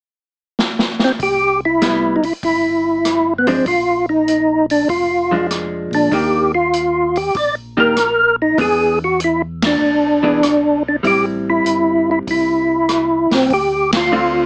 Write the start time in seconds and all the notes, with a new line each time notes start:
0.59 snare
0.79 snare
0.99 snare
1.04 C4
1.19 C2 G4, kick, open hi-hat
1.65 E4
1.82 G3 B3 E4, snare, closed hi-hat
2.16 D#4
2.23 C2 E4, open hi-hat
2.43 G1 E4, kick, open hi-hat
3.05 cross-stick, closed hi-hat
3.38 B3
3.47 F3 G#3 C4 D4, open hi-hat
3.66 A#1 F4, kick, open hi-hat
4.09 D#4
4.28 closed hi-hat
4.70 D4, open hi-hat
4.89 F1 F4, kick, open hi-hat
5.31 F3 G#3 D4
5.51 cross-stick, closed hi-hat
5.91 A#2 D4, open hi-hat
6.12 D#2 D#3 A#3 D4 G4, kick, open hi-hat
6.55 F4
6.73 closed hi-hat
7.16 G4, open hi-hat
7.35 A#1 D5, kick, open hi-hat
7.77 D#3 A#3 D4 G4 A#4
7.97 cross-stick, closed hi-hat
8.42 D#4
8.58 E2 E3 B3 D4 G#4, kick, open hi-hat
9.04 F#4
9.20 closed hi-hat
9.24 E4
9.62 D4, snare, ride
9.81 B1
10.23 E3 B3 D4 G#4
10.43 cross-stick, closed hi-hat
10.88 D4
11.03 A1 G3 C4 E4 G4, kick, open hi-hat
11.50 E4
11.65 G1, closed hi-hat
12.11 E4
12.27 C2 E4, kick, open hi-hat
12.89 cross-stick, closed hi-hat
13.30 C2, snare, open hi-hat
13.35 C4
13.50 D2 G4, kick, open hi-hat
13.92 F4, snare, ride
14.12 D3 A3 C4 F4